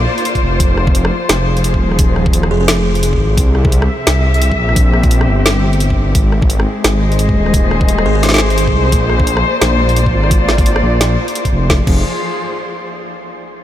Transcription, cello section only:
0.00 1.72 A#3 medium
0.00 3.38 F4 medium
0.00 4.17 C5 medium
0.00 1.41 D5 medium
0.61 3.38 F3 medium
1.07 3.38 G#4 medium
3.38 6.15 C3 medium
3.55 6.15 E5 loud
3.68 7.03 C4 medium
4.40 6.15 G4 medium
6.15 8.93 G#3 medium
6.46 9.43 G#4 medium
6.95 8.93 D#5 medium
7.01 11.70 C5 medium
8.92 11.70 A#3 medium
9.23 11.70 F4 medium
9.50 11.70 D5 medium
11.70 13.05 F3 medium
11.76 13.05 F4 medium
11.82 13.05 G#4 medium
11.86 13.05 C5 medium

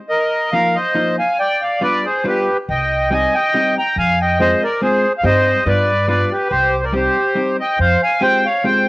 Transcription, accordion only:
0.09 0.50 A#4 medium
0.09 0.54 D#5 medium
0.52 0.75 A#4 medium
0.52 0.77 F5 medium
0.75 1.16 C5 medium
0.75 1.16 D#5 medium
1.19 1.37 F5 medium
1.19 1.39 G#5 medium
1.39 1.61 D5 medium
1.39 1.63 G5 medium
1.62 1.80 D5 medium
1.62 1.82 F5 medium
1.81 2.04 B4 medium
1.81 2.06 D5 loud
2.05 2.24 G#4 medium
2.05 2.26 C5 medium
2.27 2.57 G4 medium
2.27 2.57 B4 medium
2.69 3.09 D#5 medium
2.69 3.13 G5 medium
3.11 3.34 D#5 medium
3.11 3.36 G#5 medium
3.35 3.75 D#5 medium
3.35 3.77 G5 loud
3.78 3.96 G5 medium
3.78 3.98 A#5 medium
3.98 4.19 F5 medium
3.98 4.21 G#5 loud
4.21 4.39 D#5 medium
4.21 4.41 G5 medium
4.40 4.61 C5 medium
4.40 4.64 D#5 loud
4.63 4.81 A#4 medium
4.63 4.81 D5 medium
4.83 5.13 G#4 medium
4.83 5.13 C5 medium
5.18 5.24 F5 medium
5.25 5.64 C5 medium
5.25 5.68 D#5 loud
5.68 6.06 B4 medium
5.68 6.08 D5 medium
6.08 6.30 B4 medium
6.08 6.33 D5 medium
6.32 6.48 G4 medium
6.32 6.52 B4 medium
6.50 6.81 G4 medium
6.50 6.85 C5 medium
6.83 6.92 A#4 soft
6.83 6.94 D5 medium
6.93 7.56 G4 medium
6.93 7.56 C5 medium
7.60 7.78 D#5 medium
7.60 7.79 G5 medium
7.80 8.02 C5 medium
7.80 8.01 F5 loud
8.02 8.21 F5 medium
8.02 8.23 G#5 medium
8.23 8.44 C5 medium
8.23 8.47 G5 loud
8.45 8.64 C#5 medium
8.45 8.66 F5 medium
8.64 8.86 C5 medium
8.64 8.89 G5 medium

